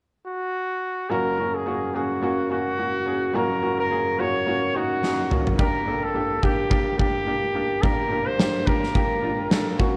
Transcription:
0.26 1.11 F#4 medium
1.10 3.31 F#1 soft
1.10 3.31 F#2 soft
1.10 1.32 A#3 medium
1.10 1.32 C#4 medium
1.10 1.33 F#4 medium
1.10 1.56 A#4 medium
1.38 1.60 A#3 soft
1.38 1.61 C#4 soft
1.38 1.61 F#4 soft
1.55 1.96 G#4 medium
1.66 1.88 A#3 medium
1.66 1.89 C#4 medium
1.66 1.89 F#4 medium
1.94 2.16 A#3 medium
1.94 2.17 C#4 soft
1.94 2.51 F#4 medium
1.94 2.17 G#4 medium
2.21 2.44 A#3 medium
2.21 2.45 C#4 medium
2.21 2.45 F#4 medium
2.50 2.72 A#3 medium
2.50 2.73 C#4 medium
2.50 3.37 F#4 medium
2.50 2.73 F#4 medium
2.78 3.00 A#3 soft
2.78 3.01 C#4 soft
2.78 3.01 F#4 medium
3.06 3.28 A#3 medium
3.06 3.29 C#4 soft
3.06 3.29 G#4 medium
3.34 5.55 F#1 soft
3.34 5.55 F#2 soft
3.34 3.56 A#3 medium
3.34 3.57 C#4 medium
3.34 3.57 F#4 medium
3.34 3.79 A#4 medium
3.62 3.84 A#3 medium
3.62 3.85 C#4 soft
3.62 3.85 F#4 medium
3.79 4.21 A#4 medium
3.90 4.13 A#3 medium
3.90 4.13 C#4 medium
3.90 4.13 G#4 medium
4.18 4.41 A#3 medium
4.18 4.41 C#4 medium
4.18 4.42 F#4 medium
4.18 4.78 C#5 medium
4.46 4.69 A#3 medium
4.46 4.69 C#4 medium
4.46 4.70 F#4 medium
4.74 4.97 A#3 medium
4.74 4.97 C#4 soft
4.74 4.98 D#4 medium
4.74 5.33 F#4 medium
5.02 5.25 A#3 soft
5.02 5.25 C#4 soft
5.02 5.26 D#4 medium
5.02 snare soft
5.30 5.53 A#3 medium
5.30 5.53 C#4 medium
5.30 5.54 F#4 medium
5.30 mid tom medium
5.47 floor tom medium
5.58 7.79 G1 medium
5.58 7.79 G2 soft
5.58 5.81 A#3 medium
5.58 5.81 D4 medium
5.58 5.81 G4 medium
5.58 6.05 A#4 medium
5.58 kick medium
5.86 6.09 A#3 soft
5.86 6.09 D4 soft
5.86 6.10 A4 medium
6.03 6.45 A4 medium
6.14 6.37 A#3 medium
6.14 6.37 D4 medium
6.14 6.37 G4 medium
6.42 6.65 A#3 medium
6.42 6.65 D4 medium
6.42 6.98 G4 medium
6.42 6.66 G4 medium
6.42 kick medium
6.70 6.93 A#3 medium
6.70 6.93 D4 medium
6.70 6.94 G4 medium
6.70 kick medium
6.98 7.21 A#3 medium
6.98 7.21 D4 medium
6.98 7.84 G4 medium
6.98 7.22 G4 medium
6.98 kick medium
7.27 7.49 A#3 soft
7.27 7.49 D4 soft
7.27 7.50 G4 medium
7.54 7.77 A#3 medium
7.54 7.77 D4 medium
7.54 7.78 G4 medium
7.82 9.76 G1 medium
7.82 9.76 G2 soft
7.82 8.05 A#3 medium
7.82 8.05 D4 medium
7.82 8.06 G4 medium
7.82 8.28 A#4 medium
7.82 kick medium
8.11 8.33 A#3 medium
8.11 8.34 D4 medium
8.11 8.34 G4 medium
8.26 8.68 C5 medium
8.38 8.61 A#3 medium
8.38 8.61 D4 medium
8.38 8.62 G4 medium
8.38 snare medium
8.66 8.89 A#3 medium
8.66 8.89 D4 medium
8.66 8.90 G4 medium
8.66 9.79 A#4 medium
8.66 kick medium
8.84 snare soft
8.94 9.17 A#3 medium
8.94 9.17 D4 medium
8.94 9.18 G4 medium
8.94 kick medium
9.22 9.45 A#3 medium
9.22 9.45 D4 medium
9.22 9.46 F4 medium
9.50 9.73 A#3 medium
9.50 9.73 D4 medium
9.50 9.74 A4 medium
9.50 snare medium
9.78 9.97 A#3 medium
9.78 9.97 C#4 medium
9.78 9.97 F#4 medium
9.78 kick medium

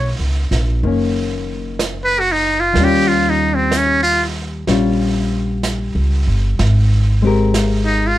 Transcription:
0.00 0.15 B1 medium
0.00 0.82 D#3 soft
0.00 0.84 A#3 soft
0.00 0.86 C#4 soft
0.00 0.13 C#5 medium
0.19 0.49 C#2 medium
0.51 0.81 A#1 medium
0.51 snare soft
0.83 2.72 F#1 medium
0.83 2.72 D#3 soft
0.83 2.77 A#3 soft
0.83 brush sweep soft
0.87 2.78 C#4 soft
1.79 brush sweep soft
1.79 snare soft
1.79 hi-hat pedal medium
2.05 2.21 B4 medium
2.20 2.34 F#4 medium
2.32 2.62 D#4 medium
2.60 2.86 F4 medium
2.73 4.63 D#2 medium
2.73 6.57 D#3 soft
2.73 brush sweep soft
2.73 snare soft
2.78 4.66 G3 soft
2.78 4.67 C#4 medium
2.84 4.69 F4 medium
2.84 3.10 G4 medium
3.08 3.31 F4 medium
3.30 3.56 D#4 medium
3.55 3.79 C4 medium
3.72 brush sweep soft
3.72 snare soft
3.72 hi-hat pedal soft
3.77 4.02 C#4 medium
4.03 4.23 F4 medium
4.67 5.91 A#1 medium
4.67 6.58 G3 soft
4.67 6.59 C#4 soft
4.67 6.60 F4 soft
4.67 brush sweep soft
4.67 snare soft
5.63 brush sweep soft
5.63 snare soft
5.63 hi-hat pedal medium
5.95 6.25 C#2 medium
6.27 6.57 G1 medium
6.59 8.15 G#1 medium
6.59 brush sweep soft
6.59 snare soft
7.22 8.18 G#3 soft
7.22 8.18 C4 soft
7.22 8.18 G4 medium
7.27 8.18 A#4 medium
7.54 brush sweep soft
7.54 snare soft
7.54 hi-hat pedal medium
7.86 8.09 D#4 medium
8.07 8.18 F4 medium

